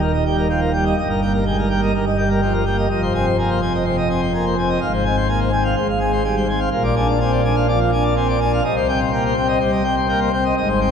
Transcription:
Already playing: D#1 D#2
0.01 A#2 A#4
0.14 D#5
0.25 G3 G5
0.37 A#4
0.49 F3 G5
0.61 A#4
0.73 G3 G5
0.86 D#5
0.97 G1 G2 D#5
1.10 A#4
1.21 A#3 G5
1.34 A#4
1.46 G#3 G5
1.58 A#4
1.70 A#3 G5
1.83 D#5
1.94 G1 G2 A#4
2.06 D#5
2.18 G3 G5
2.30 A#4
2.42 F3 G5
2.54 A#4
2.65 A#3 G5
2.78 D#5
2.90 F1 F2 D#5
3.02 C5
3.14 C4 G#5
3.26 C5
3.39 A#3 G#5
3.50 C5
3.61 C4 G#5
3.74 D#5
3.85 C3 C5
3.97 D#5
4.10 C4 G#5
4.22 C5
4.34 A#3 G#5
4.46 C5
4.58 C4 G#5
4.69 D#5
4.81 G#1 G#2 F5
4.93 C5
5.05 C4 G#5
5.17 C5
5.28 A#3 G#5
5.40 C5
5.52 C4 G#5
5.64 F5
5.76 G#1 G#2 C5
5.88 F5
6.00 G#3 G#5
6.12 C5
6.24 G3 G#5
6.36 C5
6.48 C4 G#5
6.60 F5
6.71 A#1 A#2 F5
6.84 D5
6.96 D4 G#5
7.08 D5
7.20 C4 G#5
7.32 D5
7.44 D4 G#5
7.56 F5
7.68 F3 D5
7.80 F5
7.92 D4 G#5
8.04 D5
8.16 C4 G#5
8.29 D5
8.41 D4 G#5
8.53 F5
8.64 C2 C3 D#5
8.76 C5
8.88 C4 G5
9.00 C5
9.12 A#3 G5
9.24 C5
9.36 C4 G5
9.48 D#5
9.60 G3 C5
9.72 D#5
9.84 C4 G5
9.96 C5
10.08 A#3 G5
10.21 C5
10.33 C4 G5
10.45 D#5
10.57 G#1 G#2 D#5
10.69 C5
10.81 C4 G5

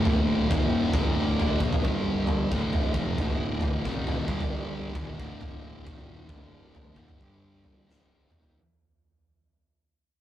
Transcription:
Already playing: D1 D2 A2 D3
0.05 floor tom
0.50 D#1 D#2 A#2 D#3, kick, floor tom
0.93 D1 D2 A2 D3, kick, floor tom
1.40 floor tom
1.60 A#1 A#2 F3 A#3, kick
1.73 floor tom
1.84 G1 G2 D3 G3, kick
2.27 floor tom
2.52 D1 D2 A2 D3, kick
2.73 floor tom
2.94 F1 F2 C3 F3, kick
3.18 D1 D2 A2 D3, kick, floor tom
3.61 floor tom
3.85 D#1 D#2 A#2 D#3, kick
4.07 floor tom
4.28 G1 G2 D3 G3, kick
4.40 floor tom
4.95 D#1 D#2 A#2 D#3, kick, floor tom
5.20 D1 D2 A2 D3, kick
5.41 floor tom
5.86 D#1 D#2 A#2 D#3, kick, floor tom
6.29 D1 D2 A2 D3, kick, floor tom
6.75 floor tom
6.96 D#1 D#2 A#2 D#3, kick, mid tom
7.08 floor tom
7.20 G1 G2 D3 G3, kick
7.64 floor tom
7.88 D1 D2 A2 D3, snare
8.31 D#1 D#2 A#2 D#3, mid tom
8.43 floor tom

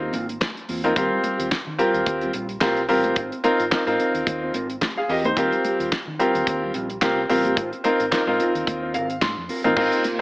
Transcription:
Already playing: C4 D#4 F4 A#4
0.02 A#3 C4 G4
0.13 G#1 A#3 C4 F4, closed hi-hat, low conga
0.29 muted clean electric guitar stroke, closed hi-hat
0.41 kick, snare, clap, high conga
0.57 muted clean electric guitar stroke, closed hi-hat
0.68 E2 A#3 C4 F4, open hi-hat
0.84 C4 D#4 F4 A#4, muted clean electric guitar stroke, closed hi-hat, high conga
0.96 D#2 G3 C4 F4 G4 A#4, kick, closed hi-hat, muted conga
1.11 muted clean electric guitar stroke
1.23 G3 C4 G4, closed hi-hat, muted conga
1.39 D#2 G3 C4 F4, closed hi-hat
1.51 muted clean electric guitar stroke, kick, snare, clap, high conga
1.67 D#3, muted clean electric guitar stroke
1.78 G3 C4 F4 G4 A#4, closed hi-hat
1.94 D#2, muted clean electric guitar stroke, closed hi-hat
2.06 D#2, muted clean electric guitar stroke, kick, closed hi-hat, muted conga
2.21 G3 C4 F4, closed hi-hat
2.33 A#1 G3 C4 F4, closed hi-hat
2.49 muted clean electric guitar stroke, closed hi-hat
2.61 C2 C4 F4 G4 A#4, kick, snare, clap, high conga
2.76 muted clean electric guitar stroke, closed hi-hat
2.88 A1 G3 C4 F4 G4 A#4, open hi-hat
3.04 G3 C4 G4, closed hi-hat, high conga
3.16 G#1 C4 F4 C5, kick, closed hi-hat, muted conga
3.32 muted clean electric guitar stroke, closed hi-hat
3.44 C4 D#4 F4 A#4, closed hi-hat, muted conga
3.59 G#1 C4 F4 A#4, closed hi-hat
3.71 C4 D#4 F4 A#4, muted clean electric guitar stroke, kick, snare, clap, high conga
3.87 G#2 C4 D#4 F4 A#4, closed hi-hat
3.99 C4 F4 A#4, closed hi-hat
4.14 D#2, muted clean electric guitar stroke, closed hi-hat
4.27 D#2, muted clean electric guitar stroke, kick, closed hi-hat, muted conga
4.42 C4 F4 C5
4.54 G#1 C4 F4 A#4, closed hi-hat, muted conga
4.70 muted clean electric guitar stroke, closed hi-hat
4.81 kick, snare, clap, high conga
4.97 G#4 F5, muted clean electric guitar stroke
5.08 E2 C4 F4 G4 A#4 D#5, open hi-hat
5.24 D#4 C5, muted clean electric guitar stroke, closed hi-hat, high conga
5.36 D#2 G3 C4 F4 G4 A#4, kick, closed hi-hat, muted conga
5.52 muted clean electric guitar stroke, closed hi-hat
5.64 G3 C4 G4, closed hi-hat, muted conga
5.79 D#2 G3 C4 F4, closed hi-hat
5.92 muted fingered electric bass stroke, kick, snare, clap, high conga
6.07 D#3, muted clean electric guitar stroke
6.19 G3 C4 F4 G4 A#4, closed hi-hat
6.35 D#2, muted clean electric guitar stroke, closed hi-hat
6.47 D#2, muted clean electric guitar stroke, kick, closed hi-hat, muted conga
6.62 G3 C4 F4
6.74 A#1 G3 C4 F4, closed hi-hat
6.90 muted clean electric guitar stroke, closed hi-hat
7.02 C2 C4 F4 G4 A#4, kick, snare, clap, high conga
7.18 muted clean electric guitar stroke
7.29 A1 G3 C4 F4 G4 A#4, open hi-hat
7.44 G3 C4 G4, closed hi-hat, high conga
7.57 G#1 C4 F4 C5, kick, closed hi-hat, muted conga
7.72 muted clean electric guitar stroke, closed hi-hat
7.84 C4 D#4 F4 A#4, closed hi-hat, muted conga
8.00 G#1 C4 F4 A#4, closed hi-hat
8.11 C4 D#4 F4 A#4, muted fingered electric bass stroke, kick, snare, clap, high conga
8.27 G#2 C4 D#4 F4 A#4, muted clean electric guitar stroke
8.39 C4 F4 A#4, closed hi-hat
8.55 D#2, muted clean electric guitar stroke, closed hi-hat
8.67 D#2, muted clean electric guitar stroke, kick, closed hi-hat, muted conga
8.82 C4 F4 C5
8.94 G#1 C4 F4 A#4 F5, closed hi-hat
9.10 muted clean electric guitar stroke, closed hi-hat
9.21 G#2 C6, kick, snare, clap, high conga
9.37 F2, muted clean electric guitar stroke
9.49 C4 F4 A#4, open hi-hat
9.64 A1 C4 D#4 F4 A#4, muted clean electric guitar stroke, closed hi-hat, high conga
9.76 G#1 C3 A#3 C4 D#4 F4 A#4, kick, crash, muted conga
9.92 muted clean electric guitar stroke, closed hi-hat
10.04 muted clean electric guitar stroke, closed hi-hat, muted conga

